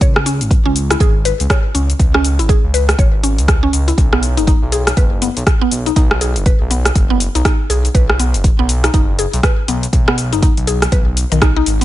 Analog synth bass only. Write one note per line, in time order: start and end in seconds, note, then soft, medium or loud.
0.01 0.42 C#2 loud
0.41 0.56 G#1 medium
0.65 0.95 C#2 medium
1.00 1.32 G#1 medium
1.40 1.47 C#2 medium
1.75 1.93 C#2 medium
1.99 2.41 C#2 loud
2.39 2.55 G#1 medium
2.64 2.94 C#2 medium
2.99 3.40 G#1 medium
3.38 3.68 C#2 loud
3.73 3.92 C#2 medium
3.98 4.39 B1 loud
4.38 4.53 F#1 medium
4.62 4.92 B1 medium
4.97 5.29 F#1 medium
5.37 5.44 B1 loud
5.72 5.90 B1 medium
5.96 6.37 B1 loud
6.36 6.51 F#1 medium
6.61 6.90 B1 medium
6.95 7.28 F#1 medium
7.35 7.42 B1 medium
7.70 7.88 B1 medium
7.95 8.36 B1 loud
8.34 8.50 F#1 medium
8.59 8.89 B1 medium
8.94 9.26 F#1 medium
9.33 9.40 B1 medium
9.68 9.87 B1 medium
9.93 10.34 B1 loud
10.33 10.48 F#1 medium
10.57 10.87 B1 medium
10.92 11.24 B1 medium
11.32 11.61 B1 medium
11.67 11.85 G#1 loud